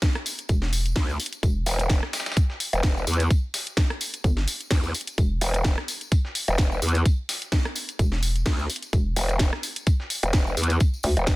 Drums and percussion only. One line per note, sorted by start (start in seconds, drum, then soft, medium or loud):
0.02 kick loud
0.02 snare loud
0.02 closed hi-hat medium
0.02 tambourine medium
0.15 cross-stick medium
0.15 closed hi-hat soft
0.26 open hi-hat loud
0.26 tambourine medium
0.26 tambourine loud
0.38 closed hi-hat medium
0.38 tambourine soft
0.49 kick loud
0.49 closed hi-hat medium
0.49 tambourine medium
0.62 snare soft
0.62 snare medium
0.73 open hi-hat loud
0.73 tambourine medium
0.73 tambourine loud
0.86 closed hi-hat medium
0.86 tambourine soft
0.96 kick loud
0.96 snare loud
0.96 closed hi-hat soft
0.96 open hi-hat medium
0.96 tambourine medium
1.09 tambourine soft
1.20 open hi-hat medium
1.20 tambourine medium
1.26 closed hi-hat medium
1.33 closed hi-hat medium
1.33 tambourine soft
1.43 kick loud
1.43 closed hi-hat medium
1.43 tambourine medium
1.66 snare medium
1.66 open hi-hat loud
1.66 tambourine loud
1.66 tambourine medium
1.79 closed hi-hat soft
1.79 tambourine soft
1.89 kick loud
1.89 snare loud
1.89 closed hi-hat medium
1.89 tambourine medium
2.03 cross-stick medium
2.03 snare soft
2.13 snare loud
2.13 open hi-hat loud
2.13 tambourine medium
2.20 snare loud
2.20 tambourine medium
2.26 snare medium
2.26 closed hi-hat medium
2.26 tambourine soft
2.26 tambourine medium
2.32 snare medium
2.32 tambourine medium
2.37 kick loud
2.37 closed hi-hat medium
2.37 tambourine medium
2.50 snare soft
2.60 open hi-hat loud
2.60 tambourine medium
2.73 closed hi-hat medium
2.73 tambourine soft
2.83 kick loud
2.83 snare loud
2.83 closed hi-hat soft
2.83 tambourine medium
2.97 tambourine soft
3.07 open hi-hat loud
3.07 tambourine loud
3.07 tambourine medium
3.14 closed hi-hat medium
3.20 closed hi-hat medium
3.20 closed hi-hat soft
3.20 tambourine soft
3.31 kick loud
3.31 closed hi-hat medium
3.31 tambourine medium
3.54 snare medium
3.54 open hi-hat loud
3.54 tambourine medium
3.67 closed hi-hat soft
3.67 tambourine soft
3.77 kick loud
3.77 snare loud
3.77 closed hi-hat medium
3.77 tambourine medium
3.90 cross-stick medium
3.90 closed hi-hat soft
4.01 open hi-hat loud
4.01 tambourine medium
4.14 closed hi-hat soft
4.14 tambourine soft
4.24 kick loud
4.24 closed hi-hat medium
4.24 tambourine medium
4.37 snare soft
4.37 snare medium
4.48 open hi-hat loud
4.48 tambourine medium
4.48 tambourine loud
4.61 closed hi-hat soft
4.61 tambourine soft
4.71 kick loud
4.71 snare loud
4.71 closed hi-hat soft
4.71 open hi-hat medium
4.71 tambourine medium
4.83 tambourine soft
4.94 open hi-hat loud
4.94 tambourine medium
5.01 closed hi-hat medium
5.07 closed hi-hat medium
5.07 tambourine soft
5.18 kick loud
5.18 closed hi-hat medium
5.18 tambourine medium
5.41 snare medium
5.41 open hi-hat loud
5.41 tambourine medium
5.54 closed hi-hat medium
5.54 tambourine soft
5.64 kick loud
5.64 snare loud
5.64 closed hi-hat medium
5.64 tambourine medium
5.64 tambourine soft
5.78 cross-stick medium
5.78 snare soft
5.88 open hi-hat loud
5.88 tambourine medium
6.01 closed hi-hat medium
6.01 tambourine soft
6.12 kick loud
6.12 closed hi-hat medium
6.12 tambourine soft
6.12 tambourine medium
6.25 snare soft
6.35 open hi-hat loud
6.35 tambourine medium
6.48 closed hi-hat soft
6.48 tambourine soft
6.58 kick loud
6.58 snare loud
6.58 closed hi-hat soft
6.58 tambourine medium
6.72 tambourine soft
6.82 open hi-hat medium
6.82 tambourine loud
6.82 tambourine medium
6.89 closed hi-hat medium
6.94 closed hi-hat medium
6.94 closed hi-hat soft
6.94 tambourine soft
7.06 kick loud
7.06 closed hi-hat medium
7.06 tambourine medium
7.29 snare medium
7.29 open hi-hat loud
7.29 tambourine medium
7.41 closed hi-hat medium
7.41 tambourine soft
7.52 kick loud
7.52 snare loud
7.52 closed hi-hat medium
7.52 tambourine loud
7.52 tambourine medium
7.65 cross-stick medium
7.65 closed hi-hat soft
7.75 open hi-hat medium
7.75 tambourine loud
7.75 tambourine medium
7.89 closed hi-hat medium
7.89 tambourine soft
7.99 kick loud
7.99 closed hi-hat medium
7.99 tambourine medium
8.12 snare soft
8.12 snare medium
8.22 open hi-hat loud
8.22 tambourine medium
8.36 closed hi-hat medium
8.36 tambourine soft
8.46 kick loud
8.46 snare loud
8.46 closed hi-hat soft
8.46 open hi-hat medium
8.46 tambourine soft
8.59 tambourine soft
8.70 open hi-hat medium
8.70 tambourine medium
8.76 closed hi-hat medium
8.83 closed hi-hat medium
8.83 tambourine soft
8.93 kick loud
8.93 closed hi-hat medium
8.93 tambourine soft
8.93 tambourine medium
9.16 snare medium
9.16 open hi-hat loud
9.16 tambourine medium
9.29 closed hi-hat medium
9.29 tambourine soft
9.39 kick loud
9.39 snare loud
9.39 closed hi-hat medium
9.39 tambourine loud
9.39 tambourine medium
9.53 cross-stick medium
9.53 snare soft
9.63 open hi-hat medium
9.63 tambourine medium
9.76 closed hi-hat medium
9.76 tambourine soft
9.87 kick loud
9.87 closed hi-hat medium
9.87 tambourine medium
10.00 snare soft
10.10 open hi-hat loud
10.10 tambourine medium
10.23 closed hi-hat medium
10.23 tambourine soft
10.33 kick loud
10.33 snare loud
10.33 closed hi-hat soft
10.33 tambourine medium
10.47 tambourine soft
10.57 open hi-hat medium
10.57 tambourine medium
10.64 closed hi-hat medium
10.70 closed hi-hat medium
10.70 closed hi-hat soft
10.70 tambourine soft
10.80 kick loud
10.80 closed hi-hat medium
10.80 tambourine medium
10.80 tambourine loud
10.94 tambourine soft
11.03 snare medium
11.03 open hi-hat loud
11.03 tambourine medium
11.17 closed hi-hat medium
11.17 tambourine soft
11.27 kick loud
11.27 snare loud
11.27 closed hi-hat medium
11.27 tambourine medium
11.27 tambourine soft